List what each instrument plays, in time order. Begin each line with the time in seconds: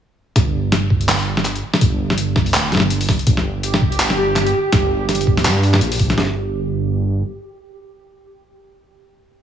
0.36 detuned saw bass G1, kick, snare, closed hi-hat
0.72 snare, closed hi-hat
0.90 kick
1.01 closed hi-hat
1.09 clap, snare, closed hi-hat
1.19 open hi-hat
1.37 snare
1.45 clap, closed hi-hat
1.55 closed hi-hat
1.74 snare, closed hi-hat
1.81 detuned saw bass G1, kick, closed hi-hat
2.10 snare
2.18 closed hi-hat
2.36 kick, snare
2.46 open hi-hat
2.54 detuned saw bass D1, clap, closed hi-hat
2.72 detuned saw bass G1, snare, open hi-hat
2.75 snare
2.77 snare
2.80 snare
2.90 closed hi-hat
3.01 open hi-hat
3.09 kick, snare, open hi-hat
3.19 closed hi-hat
3.27 detuned saw bass G1, synth texture G4, kick, closed hi-hat
3.37 snare
3.63 closed hi-hat
3.74 snare
3.82 kick
3.92 closed hi-hat
4.00 clap, closed hi-hat
4.10 snare, open hi-hat
4.36 clap, snare, closed hi-hat
4.47 closed hi-hat
4.72 detuned saw bass G1, kick, snare, closed hi-hat
5.09 snare, closed hi-hat
5.15 closed hi-hat
5.21 closed hi-hat
5.27 kick
5.37 snare, open hi-hat
5.45 detuned saw bass G2, clap, closed hi-hat
5.63 open hi-hat
5.74 clap, snare
5.81 detuned saw bass A#1, closed hi-hat
5.92 open hi-hat
5.99 kick, open hi-hat
6.10 snare, closed hi-hat
6.18 detuned saw bass G1, snare